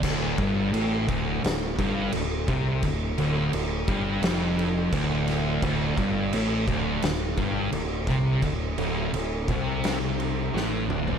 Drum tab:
CC |x-x-x-x-x-x-x-x-|x-x-x-x-x-x-x-x-|x-x-x-x-x-x-x-x-|x-x-x-x-x-x-----|
SD |--------o-------|--------o-----o-|--------o-----o-|--------o---o---|
T2 |----------------|----------------|----------------|--------------o-|
FT |----------------|----------------|----------------|---------------o|
BD |o-o---o---o---o-|o-----o-----o---|o-o---o---o---o-|o-----o---------|